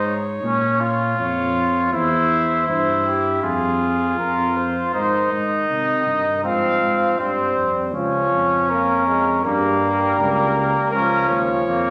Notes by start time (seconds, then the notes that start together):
Already playing: G#2 D#4
0.06 C#5
0.43 A#2 C#4
0.81 F4
1.18 F2 C#5
1.93 E2 E4 C5
2.68 G2 E4 C5
3.07 G4
3.42 F2 F4 G#4
4.18 F2 A#4
4.56 C5
4.94 G#2 D#3 D#4 C5
5.32 G#2 D#5
5.69 C3
6.07 G2
6.44 G#2 F3 C4 F5
6.81 G#2
7.18 G2 G3 C4 C5
7.56 F2
7.94 C#2 F3 C#4 C#5
8.31 F2
8.70 A#3 A#4
9.07 G#3
9.44 G2 G3 A#3 A#4
10.18 C#2 A#3
10.91 C#2 F3 C#4 A#4
11.29 D#2 C#5
11.66 F2 A#3